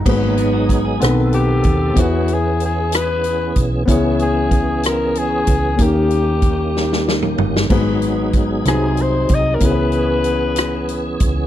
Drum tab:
CC |x-----------|------------|------------|------------|
HH |--x-x-x-x-x-|x-x-x-x-x-x-|x-x-x-x-x-x-|x-x-x-------|
SD |------r-----|------r-----|------r-----|------ooo--o|
T2 |------------|------------|------------|---------o--|
FT |------------|------------|------------|----------o-|
BD |o---o-----o-|o---------o-|o---o-----o-|o---o-------|

CC |x-----------|------------|
HH |--x-x-x-x-x-|x-x-x-x-x-x-|
SD |------r-----|------r-----|
T2 |------------|------------|
FT |------------|------------|
BD |o---o-----o-|o---------o-|